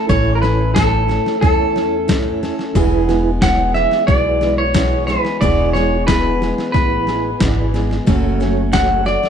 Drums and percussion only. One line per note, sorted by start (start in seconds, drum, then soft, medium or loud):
0.09 kick medium
0.09 snare soft
0.43 snare soft
0.76 kick medium
0.76 snare medium
0.76 hi-hat pedal medium
1.09 snare soft
1.26 snare soft
1.43 kick loud
1.43 snare soft
1.76 snare soft
2.09 kick medium
2.09 snare loud
2.09 hi-hat pedal medium
2.43 snare soft
2.59 snare soft
2.75 kick loud
2.75 snare soft
3.09 snare soft
3.42 kick medium
3.42 snare loud
3.42 hi-hat pedal medium
3.75 snare soft
3.91 snare soft
4.08 kick loud
4.08 snare soft
4.41 snare soft
4.75 kick medium
4.75 snare loud
4.75 hi-hat pedal medium
5.08 snare soft
5.25 snare soft
5.41 kick medium
5.41 snare soft
5.75 snare soft
6.08 kick medium
6.08 snare medium
6.08 hi-hat pedal medium
6.42 snare soft
6.58 snare soft
6.74 kick loud
6.74 snare soft
7.07 snare soft
7.40 kick medium
7.40 snare loud
7.40 hi-hat pedal medium
7.74 snare soft
7.91 snare soft
8.07 kick loud
8.07 snare soft
8.41 snare soft
8.73 kick medium
8.73 snare loud
8.73 hi-hat pedal medium
9.06 snare soft
9.23 snare soft